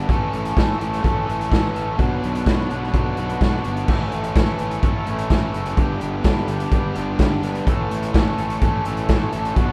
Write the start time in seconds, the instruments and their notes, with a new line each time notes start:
0.08 picked electric bass A1, overdriven electric guitar A2 E3 A3 C#4 A4, kick, closed hi-hat
0.32 picked electric bass A1, overdriven electric guitar A3 C#4 A4, closed hi-hat
0.45 closed hi-hat
0.56 picked electric bass A1, overdriven electric guitar A2 E3 A3 C#4 A4, kick, snare, closed hi-hat
0.78 picked electric bass A1, overdriven electric guitar A3 C#4 A4, closed hi-hat
0.93 snare, closed hi-hat
1.01 picked electric bass A1, overdriven electric guitar E3 A3 C#4 A4, kick
1.05 closed hi-hat
1.26 picked electric bass A1, overdriven electric guitar A2 E3 A3 C#4 A4, closed hi-hat
1.41 closed hi-hat
1.50 picked electric bass A1, overdriven electric guitar A2 E3 A3 C#4 A4, kick, snare, closed hi-hat
1.74 picked electric bass A1, overdriven electric guitar A3 C#4 A4, closed hi-hat
1.97 picked electric bass B1, overdriven electric guitar B2 F#3 B3 D4 F#4, kick, closed hi-hat
2.20 overdriven electric guitar B3 D4 F#4, closed hi-hat
2.24 picked electric bass B1
2.35 closed hi-hat
2.45 picked electric bass B1, overdriven electric guitar B2 F#3 B3 D4 F#4, kick, snare, closed hi-hat
2.69 picked electric bass B1, overdriven electric guitar B3 D4 F#4, closed hi-hat
2.83 snare
2.93 picked electric bass B1, overdriven electric guitar F#3 B3 D4 F#4, kick, closed hi-hat
3.17 picked electric bass B1, overdriven electric guitar B2 F#3 B3 D4 F#4, closed hi-hat
3.29 closed hi-hat
3.40 picked electric bass B1, overdriven electric guitar B2 F#3 B3 D4 F#4, kick, snare, closed hi-hat
3.64 picked electric bass G1, overdriven electric guitar B3 D4 F#4, closed hi-hat
3.77 closed hi-hat
3.87 picked electric bass A1, overdriven electric guitar A2 E3 A3 C#4 E4 A4, kick, crash
4.11 picked electric bass A1, overdriven electric guitar A3 C#4 E4, closed hi-hat
4.24 closed hi-hat
4.35 picked electric bass A1, overdriven electric guitar A2 E3 A3 C#4 E4 A4, kick, snare, closed hi-hat
4.58 picked electric bass A1, overdriven electric guitar A3 C#4 E4 A4, closed hi-hat
4.71 closed hi-hat
4.83 picked electric bass A1, overdriven electric guitar E3 A3 C#4 E4 A4, kick, closed hi-hat
5.05 picked electric bass A1, overdriven electric guitar A2 E3 A3 C#4 E4 A4, closed hi-hat
5.18 closed hi-hat
5.29 picked electric bass A1, overdriven electric guitar A2 E3 A3 C#4 E4 A4, kick, snare, closed hi-hat
5.52 picked electric bass F#1, overdriven electric guitar A3 C#4 E4, closed hi-hat
5.66 closed hi-hat
5.77 picked electric bass G1, overdriven electric guitar G2 D3 G3 B3 D4 G4, kick, closed hi-hat
6.00 picked electric bass G1, overdriven electric guitar G3 B3 D4 G4, closed hi-hat
6.23 picked electric bass G1, overdriven electric guitar G2 D3 G3 B3 D4 G4, kick, snare, closed hi-hat
6.47 picked electric bass G1, overdriven electric guitar G3 B3 D4 G4, closed hi-hat
6.60 closed hi-hat
6.71 picked electric bass G1, overdriven electric guitar G3 B3 D4 G4, kick, closed hi-hat
6.94 picked electric bass G1, overdriven electric guitar G2 D3 G3 B3 D4 G4, closed hi-hat
7.17 picked electric bass G1, overdriven electric guitar G2 D3 G3 B3 D4 G4, kick, snare, closed hi-hat
7.42 picked electric bass G1, overdriven electric guitar G3 B3 D4 G4, snare, closed hi-hat
7.55 closed hi-hat
7.65 picked electric bass A1, overdriven electric guitar A2 E3 A3 C#4 A4, kick, closed hi-hat
7.89 picked electric bass A1, overdriven electric guitar A3 C#4 A4, closed hi-hat
8.03 closed hi-hat
8.13 picked electric bass A1, overdriven electric guitar A2 E3 A3 C#4 A4, kick, snare, closed hi-hat
8.37 picked electric bass A1, overdriven electric guitar A3 C#4 A4, closed hi-hat
8.50 closed hi-hat
8.61 picked electric bass A1, overdriven electric guitar E3 A3 C#4 A4, kick, closed hi-hat
8.85 picked electric bass A1, overdriven electric guitar E3 A3 C#4 A4, closed hi-hat
8.89 overdriven electric guitar A2
8.97 closed hi-hat
9.08 picked electric bass A1, overdriven electric guitar A2 E3 A3 C#4 A4, kick, snare, closed hi-hat
9.32 picked electric bass A1, overdriven electric guitar A3 C#4 A4, closed hi-hat
9.45 closed hi-hat
9.56 picked electric bass B1, overdriven electric guitar B2 F#3 B3 D4 F#4, kick, closed hi-hat